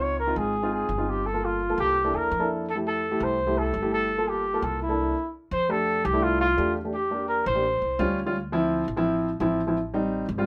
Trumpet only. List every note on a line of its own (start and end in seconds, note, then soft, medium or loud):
0.02 0.19 C#5 medium
0.19 0.39 A#4 medium
0.37 0.72 G#4 medium
0.73 1.11 G#4 medium
1.09 1.28 G4 medium
1.26 1.46 A4 medium
1.45 1.79 F4 medium
1.80 2.17 G4 loud
2.16 2.50 A#4 medium
2.69 2.77 A4 medium
2.87 3.25 A4 medium
3.23 3.59 C5 medium
3.58 3.92 A4 medium
3.94 4.30 A4 medium
4.28 4.65 G4 medium
4.64 4.81 A4 medium
4.82 5.31 E4 medium
5.52 5.72 C5 loud
5.70 6.06 A4 medium
6.05 6.24 G4 medium
6.23 6.40 F4 medium
6.41 6.73 F4 medium
6.94 7.26 G4 medium
7.28 7.45 A#4 medium
7.47 8.13 C5 medium